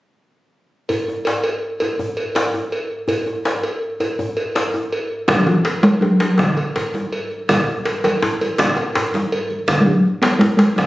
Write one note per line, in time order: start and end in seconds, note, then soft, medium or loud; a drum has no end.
0.89 cowbell soft
0.89 djembe bass medium
1.08 djembe tone soft
1.25 cowbell soft
1.25 djembe slap medium
1.44 cowbell soft
1.44 djembe slap soft
1.80 cowbell soft
1.80 djembe tone medium
1.99 djembe slap soft
1.99 djembe bass medium
2.17 cowbell soft
2.35 cowbell soft
2.35 djembe slap medium
2.54 djembe tone soft
2.72 cowbell soft
3.08 cowbell soft
3.08 djembe bass medium
3.26 djembe tone soft
3.45 cowbell soft
3.45 djembe slap medium
3.63 cowbell soft
3.63 djembe slap soft
4.00 cowbell soft
4.00 djembe tone medium
4.19 djembe slap soft
4.19 djembe bass medium
4.37 cowbell soft
4.55 cowbell soft
4.55 djembe slap medium
4.74 djembe tone soft
4.92 cowbell soft
5.28 bombo rim loud
5.28 bombo low loud
5.28 cowbell soft
5.28 djembe slap medium
5.28 high conga medium
5.28 djembe tone medium
5.28 low conga medium
5.28 djembe bass medium
5.39 5.48 F#3 medium
5.46 5.84 E3 medium
5.46 high conga soft
5.46 djembe tone medium
5.46 djembe tone soft
5.65 cowbell soft
5.65 djembe slap medium
5.65 high conga soft
5.67 djembe slap soft
5.83 6.03 G#3 loud
5.83 bombo rim soft
5.83 cowbell soft
5.83 djembe slap soft
5.83 djembe tone loud
5.83 high conga medium
6.01 6.20 F#3 medium
6.01 djembe tone medium
6.20 6.41 F#3 medium
6.20 cowbell soft
6.20 djembe slap medium
6.20 djembe tone soft
6.38 6.80 E3 medium
6.38 bombo rim loud
6.38 bombo low medium
6.38 djembe slap medium
6.38 djembe tone medium
6.38 high conga medium
6.38 low conga medium
6.57 cowbell soft
6.57 djembe slap soft
6.57 djembe tone medium
6.76 cowbell medium
6.76 djembe slap medium
6.76 djembe slap soft
6.76 djembe bass medium
6.94 djembe slap soft
6.94 high conga medium
6.94 djembe tone soft
7.13 cowbell medium
7.13 djembe slap soft
7.31 high conga soft
7.49 bombo rim loud
7.49 bombo low loud
7.49 cowbell medium
7.49 djembe slap medium
7.49 high conga medium
7.49 low conga medium
7.49 djembe bass medium
7.67 high conga soft
7.67 djembe tone soft
7.85 cowbell medium
7.85 djembe slap medium
7.85 high conga soft
8.04 bombo rim soft
8.04 cowbell medium
8.04 djembe slap soft
8.04 djembe tone medium
8.04 high conga medium
8.22 djembe slap medium
8.22 djembe bass medium
8.41 cowbell medium
8.41 high conga soft
8.41 djembe tone soft
8.58 bombo rim loud
8.58 bombo low medium
8.58 djembe slap medium
8.58 high conga medium
8.58 low conga medium
8.60 djembe slap medium
8.77 cowbell soft
8.77 djembe slap soft
8.77 djembe tone medium
8.95 cowbell soft
8.95 djembe slap medium
8.95 djembe slap soft
8.95 djembe bass medium
9.14 djembe slap medium
9.14 high conga medium
9.14 djembe tone medium
9.32 cowbell medium
9.32 djembe slap soft
9.50 high conga soft
9.68 bombo rim loud
9.68 bombo low loud
9.68 cowbell soft
9.68 djembe slap medium
9.68 high conga medium
9.68 low conga medium
9.68 djembe bass medium
9.80 9.88 G#3 medium
9.86 10.23 F#3 medium
9.86 high conga soft
9.86 djembe tone soft
10.05 djembe slap soft
10.05 high conga soft
10.22 10.40 B3 medium
10.22 bombo rim soft
10.22 cowbell soft
10.22 djembe slap loud
10.22 djembe slap medium
10.22 high conga medium
10.39 10.57 G#3 medium
10.39 djembe slap medium
10.39 djembe bass medium
10.57 10.78 G#3 medium
10.57 cowbell medium
10.57 djembe slap medium
10.57 djembe tone medium
10.76 10.87 F#3 medium
10.76 bombo rim loud
10.76 bombo low medium
10.76 djembe slap medium
10.76 high conga medium
10.76 low conga medium